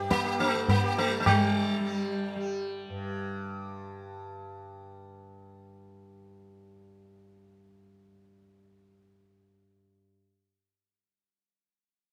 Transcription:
Already playing: G2 D3 G3 G4
0.10 A#3, tabla ke
0.26 G4
0.39 A3, tabla te
0.55 D3
0.69 A#3, tabla tin, tabla ge
0.84 G4
0.97 A3, tabla te
1.08 G3
1.20 A3
1.26 D3 G3, tabla na, tabla ge
1.80 G3
2.36 G3
2.89 G2

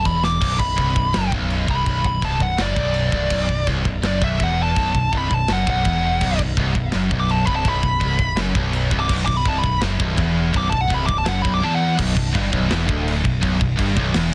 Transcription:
0.05 E1 E2 B5, kick, china
0.23 D6, snare
0.41 B0 B1, kick, crash, china
0.60 B0 B1 B5, kick
0.78 C1 C2, kick, china
0.96 B0 B1, kick
1.13 F#1 F#2, snare, china
1.30 B0 B1, kick
1.50 china
1.67 C1 C2, kick
1.71 B5
1.85 B0 B1, kick, china
2.02 B0 B1 B5, kick
2.22 C1 C2 A5, kick, china
2.40 B0 B1 F#5, kick
2.58 F#1 F#2 D5, snare, china
2.76 B0 B1, kick
2.94 china
3.12 C1 C2, kick
3.30 B0 B1, kick, crash, china
3.49 B0 B1, kick
3.67 C1 C2, kick, china
3.84 B0 B1, kick
4.02 F#1 F#2 D5, snare, china
4.22 B0 B1 E5, kick
4.39 E1 E2, kick, china
4.44 F#5
4.63 A5
4.75 B0 B1, kick, china
4.94 B0 B1, kick
5.12 C1 C2, kick, china
5.18 B5
5.30 B0 B1 A5, kick
5.48 F#1 F#2, snare, china
5.53 F#5
5.67 B0 B1 F#5, kick
5.85 E1 E2, kick, china
6.21 B0 B1, kick, crash, china
6.39 B0 B1, kick
6.57 C1 C2, kick, china
6.75 B0 B1, kick
6.92 F#1 F#2, snare, china
7.11 B0 B1, kick
7.20 D6
7.29 A5, china
7.45 C1 C2 B5, kick
7.56 A5
7.65 B0 B1 B5, kick, china
7.83 B0 B1, kick
8.01 C1 C2, kick, china
8.19 B0 B1, kick
8.37 F#1 F#2, snare, china
8.55 B0 B1, kick
8.73 china
8.91 C1 C2, kick
9.00 D6
9.09 B0 B1, kick, china, crash
9.26 B0 B1 D6, kick
9.37 B5
9.45 C1 C2 A5, kick, china
9.58 B5
9.63 B0 B1, kick
9.82 F#1 F#2, snare, china
9.99 B0 B1, kick
10.16 E1 E2, kick, china
10.52 B0 B1, kick, china
10.57 D6
10.70 B0 B1 A5, kick
10.81 F#5
10.88 C1 C2, kick, china
10.94 B5
11.06 B0 B1 D6, kick
11.18 A5
11.26 F#1 F#2 F#5, snare, china
11.42 B0 B1 B5, kick
11.54 D6
11.63 E2 A5
11.75 F#5
11.99 B0 B1, kick, crash
12.16 B0 B1, kick
12.34 G1 G2, kick, crash
12.53 B0 B1, kick
12.70 E1 E2, snare, crash
12.87 D1 D2, kick
13.08 crash
13.23 B0 B1, kick
13.40 B0 B1, kick, crash
13.59 B0 B1, kick
13.77 G1 G2, kick, crash
13.94 B0 B1, kick
14.13 E1 E2, snare, crash

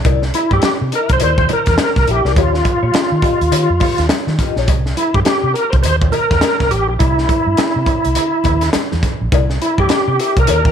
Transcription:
0.05 C2 E4 A#4 D5, kick, closed hi-hat, cowbell, muted conga
0.22 muted clean electric guitar stroke, snare
0.34 E4, muted clean electric guitar stroke, closed hi-hat, muted conga
0.51 G2 E4 G4 A#4 D5, kick
0.62 G4, muted fingered electric bass stroke, snare, closed hi-hat, cowbell, high conga
0.81 C3, muted clean electric guitar stroke
0.92 E4 A#4 E5, closed hi-hat
1.09 C2 C5, muted clean electric guitar stroke, kick, closed hi-hat
1.20 D#2 E4 A#4 C5 D5, closed hi-hat, cowbell, low conga
1.38 kick
1.49 E4 A#4 D5, closed hi-hat, cowbell, muted conga, low conga
1.53 A#4
1.66 E2, muted clean electric guitar stroke, kick, snare, closed hi-hat
1.78 muted clean electric guitar stroke, snare, closed hi-hat, cowbell, high conga
1.96 C2, muted clean electric guitar stroke, kick, snare, high conga
2.08 A#1 E4 G4 A#4 E5, closed hi-hat
2.25 C2 E4 G4 A#4 D5, snare
2.36 D#2 F4 G4 C#5, kick, closed hi-hat, cowbell, muted conga
2.54 muted clean electric guitar stroke, snare
2.65 muted clean electric guitar stroke, kick, closed hi-hat, cowbell, muted conga
2.83 A#2 F4 G4 C#5
2.94 muted fingered electric bass stroke, snare, closed hi-hat, cowbell, high conga
3.11 D#3, muted clean electric guitar stroke
3.22 F4 G4 D#5, kick, closed hi-hat
3.41 D#2, closed hi-hat
3.52 D#3 F4 G4 C#5, closed hi-hat, cowbell, low conga
3.69 F2, muted clean electric guitar stroke
3.80 F4 G4 C#5, kick, open hi-hat, cowbell, muted conga, low conga
3.98 D#2, snare, closed hi-hat
4.09 muted clean electric guitar stroke, snare, closed hi-hat, cowbell, high conga
4.27 D#3, muted clean electric guitar stroke, snare, high conga
4.39 F4 G4 D#5, kick, snare, closed hi-hat
4.56 A#1 F4 G4 C#5, snare
4.68 C2, kick, closed hi-hat, cowbell, muted conga
4.86 snare
4.97 E4, closed hi-hat, muted conga
5.14 G2 G4, kick
5.25 G4, muted fingered electric bass stroke, snare, closed hi-hat, cowbell, high conga
5.43 C3
5.54 A#4, closed hi-hat
5.70 C2 C5, kick, closed hi-hat
5.83 D#2 C5, closed hi-hat, cowbell, low conga
6.02 kick
6.12 A#4, closed hi-hat, cowbell, muted conga, low conga
6.31 E2, kick, snare
6.41 snare, closed hi-hat, cowbell, high conga
6.60 C2, kick, snare, high conga
6.71 A1 G4, closed hi-hat
6.89 A#1 G4
6.99 C2 E4, kick, closed hi-hat, cowbell, muted conga
7.18 snare
7.29 kick, closed hi-hat, muted conga
7.46 G2
7.57 muted fingered electric bass stroke, snare, closed hi-hat, cowbell, high conga
7.76 C3
7.86 kick, closed hi-hat
8.05 C2, closed hi-hat
8.15 closed hi-hat, cowbell, low conga
8.44 D#2, kick, closed hi-hat, cowbell, muted conga, low conga
8.61 snare, closed hi-hat
8.73 muted fingered electric bass stroke, snare, closed hi-hat, cowbell, high conga
8.92 E2, snare, high conga
9.03 kick, snare, closed hi-hat
9.21 A#1
9.32 C2 E4 A#4 D5, kick, closed hi-hat, cowbell, muted conga
9.50 muted clean electric guitar stroke, snare
9.60 E4, muted clean electric guitar stroke, closed hi-hat, muted conga
9.78 G2 E4 G4 A#4 D5, kick
9.89 muted fingered electric bass stroke, snare, closed hi-hat, cowbell, high conga
10.08 C3, muted clean electric guitar stroke
10.19 E4 G4 A#4 E5, closed hi-hat
10.36 C2 A#4, muted clean electric guitar stroke, kick, closed hi-hat
10.47 D#2 E4 A#4 D5, closed hi-hat, cowbell, low conga
10.65 muted clean electric guitar stroke, kick

